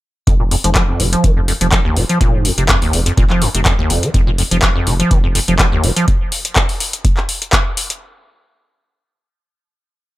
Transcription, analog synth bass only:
0.27 0.57 F1 medium
0.64 0.93 F1 medium
1.00 1.16 F1 medium
1.24 1.53 F1 medium
1.61 1.90 F1 medium
1.96 2.05 F1 medium
2.21 2.50 F1 loud
2.58 2.87 F1 loud
2.93 3.09 F1 medium
3.17 3.47 F1 medium
3.55 3.83 F1 medium
3.90 3.98 F1 medium
4.14 4.44 F1 medium
4.51 4.80 F1 loud
4.87 5.03 F1 medium
5.11 5.40 F1 medium
5.48 5.77 F1 medium
5.83 5.92 F1 loud

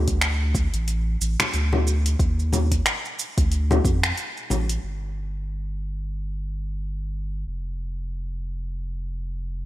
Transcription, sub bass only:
0.00 0.68 D2 loud
0.74 1.16 A1 loud
1.21 1.36 A1 medium
1.54 2.16 D2 medium
2.20 2.81 D#2 medium
3.38 3.80 D2 loud
3.85 4.12 F2 loud
4.50 4.78 A1 loud
4.83 7.45 G1 medium
7.47 9.65 F1 medium

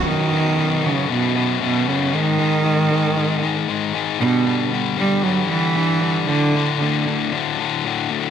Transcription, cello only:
0.07 0.87 D#3 loud
0.86 1.10 C#3 loud
1.11 1.59 B2 loud
1.63 1.89 B2 loud
1.88 2.15 C#3 loud
2.14 3.95 D#3 loud
4.20 4.68 B2 loud
4.99 5.24 G3 loud
5.23 5.47 F#3 loud
5.48 6.23 E3 loud
6.26 6.75 D3 loud
6.78 7.53 D3 medium

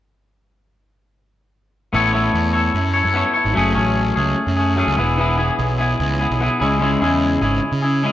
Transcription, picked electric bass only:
1.94 2.28 A1 medium
2.34 2.69 E2 medium
2.74 3.00 F#2 medium
3.04 3.22 F#2 medium
3.45 3.54 G#1 medium
3.56 3.74 F#1 medium
3.76 4.11 A1 medium
4.16 4.34 C#2 medium
4.47 4.82 F#2 medium
4.87 4.96 C#2 medium
4.97 5.49 E1 medium
5.59 5.94 B1 medium
6.00 6.26 C#2 medium
6.31 6.48 B1 medium
6.61 6.96 C#2 medium
7.02 7.36 E2 medium
7.41 7.59 G#1 medium
7.72 8.07 C#3 medium

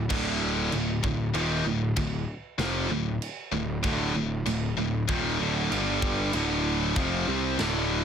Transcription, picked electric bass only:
0.10 0.68 D1 medium
0.73 1.02 D1 medium
1.04 1.33 D1 medium
1.34 1.63 D#1 loud
1.65 1.94 D1 medium
1.97 2.26 D1 medium
2.58 2.88 F1 loud
2.89 3.18 D1 medium
3.52 3.81 D1 medium
3.84 4.13 D1 loud
4.14 4.43 D1 medium
4.46 4.75 D1 medium
4.77 5.06 D1 medium
5.09 5.38 D#1 loud
5.40 5.69 D1 loud
5.71 6.30 G1 loud
6.34 6.92 D1 loud
6.96 7.25 F1 medium
7.28 7.57 C2 loud
7.59 8.04 D1 medium

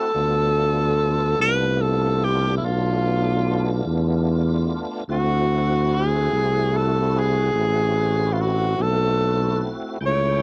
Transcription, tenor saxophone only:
0.00 1.40 A4 medium
1.41 1.83 B4 loud
1.82 2.25 A4 medium
2.24 2.56 G4 medium
2.57 2.67 E4 medium
2.65 3.87 F4 medium
5.11 5.95 F#4 medium
5.94 6.79 G#4 medium
6.77 7.20 A4 medium
7.19 8.34 G#4 medium
8.33 8.43 F4 medium
8.42 8.83 F#4 medium
8.82 9.73 A4 medium
10.06 10.42 C#5 medium

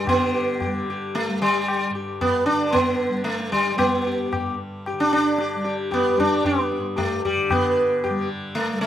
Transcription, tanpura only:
0.00 1.89 G2 soft
0.00 2.48 D3 medium
0.00 0.66 G3 medium
0.66 1.28 G3 soft
1.28 3.09 G3 medium
1.89 4.31 G2 medium
2.48 4.92 D3 medium
3.09 3.72 G3 medium
3.72 5.55 G3 medium
4.32 6.77 G2 medium
4.93 7.36 D3 medium
5.55 6.16 G3 soft
6.16 8.09 G3 medium
6.77 8.87 G2 medium
7.36 7.49 D3 medium
7.49 8.87 D3 medium
8.09 8.71 G3 medium
8.71 8.87 G3 medium

